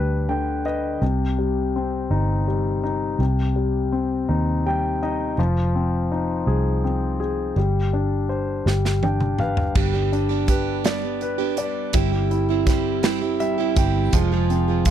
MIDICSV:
0, 0, Header, 1, 5, 480
1, 0, Start_track
1, 0, Key_signature, -3, "minor"
1, 0, Tempo, 728155
1, 670, Time_signature, 6, 3, 24, 8
1, 9825, End_track
2, 0, Start_track
2, 0, Title_t, "Grand piano"
2, 0, Program_c, 0, 0
2, 0, Control_c, 0, 64, 127
2, 0, Note_on_c, 0, 55, 53
2, 0, Note_on_c, 0, 62, 34
2, 0, Note_on_c, 0, 67, 38
2, 0, Note_on_c, 0, 71, 44
2, 191, Note_on_c, 0, 79, 50
2, 193, Note_on_c, 0, 50, 40
2, 406, Note_off_c, 0, 62, 0
2, 414, Note_off_c, 0, 79, 0
2, 422, Note_off_c, 0, 71, 0
2, 432, Note_on_c, 0, 71, 38
2, 433, Note_on_c, 0, 75, 45
2, 646, Note_off_c, 0, 67, 0
2, 648, Note_off_c, 0, 55, 0
2, 655, Note_off_c, 0, 75, 0
2, 657, Note_off_c, 0, 50, 0
2, 664, Note_off_c, 0, 71, 0
2, 670, Note_on_c, 0, 48, 49
2, 678, Control_c, 0, 64, 0
2, 811, Control_c, 0, 64, 127
2, 914, Note_on_c, 0, 55, 38
2, 1159, Note_on_c, 0, 60, 38
2, 1389, Note_on_c, 0, 63, 42
2, 1623, Note_off_c, 0, 55, 0
2, 1633, Note_on_c, 0, 55, 38
2, 1860, Note_off_c, 0, 63, 0
2, 1869, Note_on_c, 0, 63, 37
2, 2082, Note_off_c, 0, 48, 0
2, 2087, Note_off_c, 0, 60, 0
2, 2096, Note_off_c, 0, 55, 0
2, 2102, Note_off_c, 0, 63, 0
2, 2109, Note_on_c, 0, 48, 50
2, 2118, Control_c, 0, 64, 0
2, 2221, Control_c, 0, 64, 127
2, 2347, Note_on_c, 0, 55, 38
2, 2586, Note_on_c, 0, 60, 42
2, 2826, Note_on_c, 0, 63, 44
2, 3065, Note_off_c, 0, 55, 0
2, 3075, Note_on_c, 0, 55, 42
2, 3075, Note_on_c, 0, 79, 53
2, 3295, Note_off_c, 0, 79, 0
2, 3306, Note_off_c, 0, 63, 0
2, 3314, Note_on_c, 0, 75, 46
2, 3316, Note_on_c, 0, 63, 40
2, 3520, Note_off_c, 0, 60, 0
2, 3521, Note_off_c, 0, 48, 0
2, 3534, Note_off_c, 0, 75, 0
2, 3537, Note_off_c, 0, 55, 0
2, 3544, Note_off_c, 0, 63, 0
2, 3553, Note_on_c, 0, 53, 55
2, 3557, Control_c, 0, 64, 0
2, 3657, Control_c, 0, 64, 127
2, 3792, Note_on_c, 0, 60, 38
2, 4031, Note_on_c, 0, 63, 41
2, 4268, Note_on_c, 0, 68, 43
2, 4499, Note_off_c, 0, 60, 0
2, 4509, Note_on_c, 0, 60, 41
2, 4736, Note_off_c, 0, 68, 0
2, 4746, Note_on_c, 0, 68, 38
2, 4964, Note_off_c, 0, 63, 0
2, 4965, Note_off_c, 0, 53, 0
2, 4974, Note_off_c, 0, 60, 0
2, 4980, Note_off_c, 0, 68, 0
2, 4992, Note_on_c, 0, 55, 50
2, 4996, Control_c, 0, 64, 0
2, 5126, Control_c, 0, 64, 127
2, 5230, Note_on_c, 0, 62, 37
2, 5467, Note_on_c, 0, 72, 42
2, 5690, Note_off_c, 0, 55, 0
2, 5696, Note_off_c, 0, 62, 0
2, 5701, Note_off_c, 0, 72, 0
2, 5710, Note_on_c, 0, 55, 50
2, 5719, Control_c, 0, 64, 0
2, 5822, Control_c, 0, 64, 127
2, 5955, Note_on_c, 0, 62, 40
2, 5956, Note_on_c, 0, 79, 51
2, 6177, Note_off_c, 0, 79, 0
2, 6194, Note_on_c, 0, 77, 50
2, 6196, Note_on_c, 0, 71, 39
2, 6409, Note_off_c, 0, 55, 0
2, 6416, Note_off_c, 0, 77, 0
2, 6419, Note_off_c, 0, 62, 0
2, 6426, Note_off_c, 0, 71, 0
2, 6436, Note_on_c, 0, 55, 51
2, 6439, Control_c, 0, 64, 0
2, 6537, Control_c, 0, 64, 127
2, 6675, Note_on_c, 0, 62, 40
2, 6917, Note_on_c, 0, 71, 44
2, 7157, Note_on_c, 0, 74, 50
2, 7387, Note_off_c, 0, 71, 0
2, 7397, Note_on_c, 0, 71, 47
2, 7608, Note_off_c, 0, 62, 0
2, 7624, Note_off_c, 0, 74, 0
2, 7633, Note_on_c, 0, 74, 42
2, 7849, Note_off_c, 0, 55, 0
2, 7861, Note_off_c, 0, 71, 0
2, 7866, Note_off_c, 0, 74, 0
2, 7870, Note_on_c, 0, 55, 57
2, 7881, Control_c, 0, 64, 0
2, 7984, Control_c, 0, 64, 127
2, 8115, Note_on_c, 0, 64, 43
2, 8338, Note_off_c, 0, 55, 0
2, 8347, Note_on_c, 0, 55, 48
2, 8582, Note_off_c, 0, 64, 0
2, 8592, Note_on_c, 0, 64, 52
2, 8824, Note_off_c, 0, 55, 0
2, 8834, Note_on_c, 0, 55, 47
2, 8834, Note_on_c, 0, 76, 60
2, 9058, Note_off_c, 0, 76, 0
2, 9066, Note_off_c, 0, 64, 0
2, 9075, Note_on_c, 0, 64, 42
2, 9075, Note_on_c, 0, 79, 55
2, 9299, Note_off_c, 0, 79, 0
2, 9301, Note_off_c, 0, 55, 0
2, 9309, Note_off_c, 0, 64, 0
2, 9317, Note_on_c, 0, 53, 60
2, 9324, Control_c, 0, 64, 0
2, 9421, Control_c, 0, 64, 127
2, 9558, Note_on_c, 0, 60, 40
2, 9799, Note_on_c, 0, 65, 48
2, 9825, Note_off_c, 0, 53, 0
2, 9825, Note_off_c, 0, 60, 0
2, 9825, Note_off_c, 0, 65, 0
2, 9825, End_track
3, 0, Start_track
3, 0, Title_t, "Steel-string acoustic guitar"
3, 0, Program_c, 1, 25
3, 6428, Note_on_c, 1, 55, 65
3, 6434, Note_on_c, 1, 59, 60
3, 6434, Note_on_c, 1, 62, 63
3, 6438, Note_on_c, 1, 67, 70
3, 6539, Note_off_c, 1, 67, 0
3, 6547, Note_on_c, 1, 67, 48
3, 6549, Note_off_c, 1, 55, 0
3, 6550, Note_off_c, 1, 62, 0
3, 6552, Note_off_c, 1, 59, 0
3, 6558, Note_on_c, 1, 62, 42
3, 6565, Note_on_c, 1, 59, 42
3, 6776, Note_off_c, 1, 67, 0
3, 6784, Note_on_c, 1, 67, 46
3, 6787, Note_off_c, 1, 62, 0
3, 6794, Note_off_c, 1, 59, 0
3, 6795, Note_on_c, 1, 62, 45
3, 6802, Note_on_c, 1, 59, 39
3, 6900, Note_on_c, 1, 55, 52
3, 6901, Note_off_c, 1, 59, 0
3, 6906, Note_off_c, 1, 62, 0
3, 6908, Note_off_c, 1, 67, 0
3, 6909, Note_on_c, 1, 59, 55
3, 6914, Note_on_c, 1, 62, 56
3, 6918, Note_on_c, 1, 67, 61
3, 7139, Note_off_c, 1, 55, 0
3, 7144, Note_off_c, 1, 59, 0
3, 7147, Note_on_c, 1, 55, 59
3, 7148, Note_off_c, 1, 62, 0
3, 7152, Note_off_c, 1, 67, 0
3, 7152, Note_on_c, 1, 59, 69
3, 7156, Note_on_c, 1, 62, 68
3, 7160, Note_on_c, 1, 67, 71
3, 7255, Note_off_c, 1, 67, 0
3, 7263, Note_on_c, 1, 67, 49
3, 7264, Note_off_c, 1, 62, 0
3, 7269, Note_off_c, 1, 55, 0
3, 7272, Note_off_c, 1, 59, 0
3, 7272, Note_on_c, 1, 62, 41
3, 7282, Note_on_c, 1, 59, 33
3, 7495, Note_off_c, 1, 67, 0
3, 7503, Note_on_c, 1, 67, 45
3, 7506, Note_off_c, 1, 62, 0
3, 7512, Note_off_c, 1, 59, 0
3, 7514, Note_on_c, 1, 62, 43
3, 7520, Note_on_c, 1, 59, 43
3, 7624, Note_off_c, 1, 59, 0
3, 7626, Note_on_c, 1, 55, 57
3, 7628, Note_off_c, 1, 67, 0
3, 7630, Note_off_c, 1, 62, 0
3, 7631, Note_on_c, 1, 59, 49
3, 7637, Note_on_c, 1, 62, 54
3, 7642, Note_on_c, 1, 67, 57
3, 7861, Note_off_c, 1, 55, 0
3, 7868, Note_off_c, 1, 59, 0
3, 7868, Note_on_c, 1, 55, 72
3, 7870, Note_off_c, 1, 67, 0
3, 7871, Note_on_c, 1, 60, 67
3, 7872, Note_off_c, 1, 62, 0
3, 7875, Note_on_c, 1, 64, 73
3, 7878, Note_on_c, 1, 67, 79
3, 7980, Note_off_c, 1, 67, 0
3, 7988, Note_on_c, 1, 67, 46
3, 7989, Note_off_c, 1, 64, 0
3, 7991, Note_off_c, 1, 55, 0
3, 7992, Note_off_c, 1, 60, 0
3, 7997, Note_on_c, 1, 64, 41
3, 8005, Note_on_c, 1, 60, 40
3, 8224, Note_off_c, 1, 67, 0
3, 8232, Note_on_c, 1, 67, 42
3, 8233, Note_off_c, 1, 64, 0
3, 8240, Note_off_c, 1, 60, 0
3, 8241, Note_on_c, 1, 64, 43
3, 8248, Note_on_c, 1, 60, 41
3, 8353, Note_off_c, 1, 67, 0
3, 8353, Note_on_c, 1, 55, 52
3, 8354, Note_off_c, 1, 60, 0
3, 8358, Note_off_c, 1, 64, 0
3, 8362, Note_on_c, 1, 60, 61
3, 8367, Note_on_c, 1, 64, 56
3, 8370, Note_on_c, 1, 67, 69
3, 8583, Note_off_c, 1, 55, 0
3, 8589, Note_off_c, 1, 60, 0
3, 8591, Note_on_c, 1, 55, 68
3, 8593, Note_off_c, 1, 64, 0
3, 8596, Note_on_c, 1, 60, 77
3, 8598, Note_off_c, 1, 67, 0
3, 8600, Note_on_c, 1, 64, 77
3, 8606, Note_on_c, 1, 67, 81
3, 8702, Note_off_c, 1, 67, 0
3, 8710, Note_on_c, 1, 67, 49
3, 8711, Note_off_c, 1, 64, 0
3, 8713, Note_off_c, 1, 55, 0
3, 8716, Note_off_c, 1, 60, 0
3, 8719, Note_on_c, 1, 64, 40
3, 8726, Note_on_c, 1, 60, 42
3, 8943, Note_off_c, 1, 67, 0
3, 8951, Note_on_c, 1, 67, 44
3, 8956, Note_off_c, 1, 64, 0
3, 8961, Note_off_c, 1, 60, 0
3, 8964, Note_on_c, 1, 64, 49
3, 8969, Note_on_c, 1, 60, 43
3, 9067, Note_off_c, 1, 60, 0
3, 9070, Note_on_c, 1, 55, 54
3, 9073, Note_off_c, 1, 67, 0
3, 9074, Note_off_c, 1, 64, 0
3, 9075, Note_on_c, 1, 60, 60
3, 9082, Note_on_c, 1, 64, 57
3, 9086, Note_on_c, 1, 67, 66
3, 9313, Note_off_c, 1, 55, 0
3, 9313, Note_on_c, 1, 41, 74
3, 9316, Note_off_c, 1, 60, 0
3, 9318, Note_on_c, 1, 48, 71
3, 9319, Note_off_c, 1, 64, 0
3, 9320, Note_on_c, 1, 53, 74
3, 9321, Note_off_c, 1, 67, 0
3, 9324, Note_on_c, 1, 56, 73
3, 9325, Note_on_c, 1, 65, 80
3, 9329, Note_on_c, 1, 68, 78
3, 9429, Note_off_c, 1, 68, 0
3, 9435, Note_off_c, 1, 41, 0
3, 9435, Note_off_c, 1, 65, 0
3, 9437, Note_off_c, 1, 48, 0
3, 9437, Note_on_c, 1, 68, 46
3, 9438, Note_off_c, 1, 53, 0
3, 9440, Note_off_c, 1, 56, 0
3, 9443, Note_on_c, 1, 65, 50
3, 9449, Note_on_c, 1, 56, 43
3, 9454, Note_on_c, 1, 53, 38
3, 9669, Note_off_c, 1, 68, 0
3, 9677, Note_on_c, 1, 68, 48
3, 9678, Note_off_c, 1, 65, 0
3, 9682, Note_off_c, 1, 56, 0
3, 9686, Note_off_c, 1, 53, 0
3, 9686, Note_on_c, 1, 65, 45
3, 9690, Note_on_c, 1, 56, 42
3, 9697, Note_on_c, 1, 53, 38
3, 9787, Note_off_c, 1, 53, 0
3, 9793, Note_off_c, 1, 56, 0
3, 9795, Note_on_c, 1, 53, 58
3, 9797, Note_off_c, 1, 68, 0
3, 9800, Note_off_c, 1, 65, 0
3, 9801, Note_on_c, 1, 56, 60
3, 9825, Note_off_c, 1, 53, 0
3, 9825, Note_off_c, 1, 56, 0
3, 9825, End_track
4, 0, Start_track
4, 0, Title_t, "Fingered electric bass"
4, 0, Program_c, 2, 33
4, 0, Note_on_c, 2, 38, 66
4, 644, Note_off_c, 2, 38, 0
4, 670, Note_on_c, 2, 36, 70
4, 1363, Note_off_c, 2, 36, 0
4, 1388, Note_on_c, 2, 31, 68
4, 2081, Note_off_c, 2, 31, 0
4, 2101, Note_on_c, 2, 36, 76
4, 2798, Note_off_c, 2, 36, 0
4, 2829, Note_on_c, 2, 39, 65
4, 3522, Note_off_c, 2, 39, 0
4, 3546, Note_on_c, 2, 29, 81
4, 4241, Note_off_c, 2, 29, 0
4, 4264, Note_on_c, 2, 36, 74
4, 4960, Note_off_c, 2, 36, 0
4, 4985, Note_on_c, 2, 31, 72
4, 5681, Note_off_c, 2, 31, 0
4, 5708, Note_on_c, 2, 31, 77
4, 6403, Note_off_c, 2, 31, 0
4, 6433, Note_on_c, 2, 31, 85
4, 7629, Note_off_c, 2, 31, 0
4, 7629, Note_on_c, 2, 29, 66
4, 7857, Note_off_c, 2, 29, 0
4, 7870, Note_on_c, 2, 31, 89
4, 9048, Note_off_c, 2, 31, 0
4, 9071, Note_on_c, 2, 31, 86
4, 9299, Note_off_c, 2, 31, 0
4, 9314, Note_on_c, 2, 29, 96
4, 9825, Note_off_c, 2, 29, 0
4, 9825, End_track
5, 0, Start_track
5, 0, Title_t, "Drums"
5, 5717, Note_on_c, 9, 38, 40
5, 5783, Note_off_c, 9, 38, 0
5, 5836, Note_on_c, 9, 38, 40
5, 5902, Note_off_c, 9, 38, 0
5, 5950, Note_on_c, 9, 48, 58
5, 6016, Note_off_c, 9, 48, 0
5, 6068, Note_on_c, 9, 47, 53
5, 6134, Note_off_c, 9, 47, 0
5, 6187, Note_on_c, 9, 45, 62
5, 6253, Note_off_c, 9, 45, 0
5, 6309, Note_on_c, 9, 43, 64
5, 6375, Note_off_c, 9, 43, 0
5, 6430, Note_on_c, 9, 49, 72
5, 6431, Note_on_c, 9, 36, 90
5, 6496, Note_off_c, 9, 49, 0
5, 6497, Note_off_c, 9, 36, 0
5, 6679, Note_on_c, 9, 42, 37
5, 6744, Note_off_c, 9, 42, 0
5, 6908, Note_on_c, 9, 42, 58
5, 6909, Note_on_c, 9, 36, 69
5, 6974, Note_off_c, 9, 42, 0
5, 6975, Note_off_c, 9, 36, 0
5, 7150, Note_on_c, 9, 42, 66
5, 7156, Note_on_c, 9, 38, 80
5, 7216, Note_off_c, 9, 42, 0
5, 7222, Note_off_c, 9, 38, 0
5, 7390, Note_on_c, 9, 42, 41
5, 7456, Note_off_c, 9, 42, 0
5, 7627, Note_on_c, 9, 42, 51
5, 7693, Note_off_c, 9, 42, 0
5, 7865, Note_on_c, 9, 42, 74
5, 7871, Note_on_c, 9, 36, 95
5, 7931, Note_off_c, 9, 42, 0
5, 7937, Note_off_c, 9, 36, 0
5, 8116, Note_on_c, 9, 42, 40
5, 8182, Note_off_c, 9, 42, 0
5, 8350, Note_on_c, 9, 42, 61
5, 8351, Note_on_c, 9, 36, 73
5, 8361, Note_on_c, 9, 38, 30
5, 8415, Note_off_c, 9, 42, 0
5, 8417, Note_off_c, 9, 36, 0
5, 8427, Note_off_c, 9, 38, 0
5, 8589, Note_on_c, 9, 42, 67
5, 8596, Note_on_c, 9, 38, 91
5, 8655, Note_off_c, 9, 42, 0
5, 8661, Note_off_c, 9, 38, 0
5, 8835, Note_on_c, 9, 42, 41
5, 8901, Note_off_c, 9, 42, 0
5, 9073, Note_on_c, 9, 42, 54
5, 9074, Note_on_c, 9, 36, 71
5, 9139, Note_off_c, 9, 42, 0
5, 9140, Note_off_c, 9, 36, 0
5, 9313, Note_on_c, 9, 42, 84
5, 9315, Note_on_c, 9, 36, 94
5, 9379, Note_off_c, 9, 42, 0
5, 9381, Note_off_c, 9, 36, 0
5, 9559, Note_on_c, 9, 42, 41
5, 9625, Note_off_c, 9, 42, 0
5, 9791, Note_on_c, 9, 42, 66
5, 9794, Note_on_c, 9, 36, 74
5, 9825, Note_off_c, 9, 36, 0
5, 9825, Note_off_c, 9, 42, 0
5, 9825, End_track
0, 0, End_of_file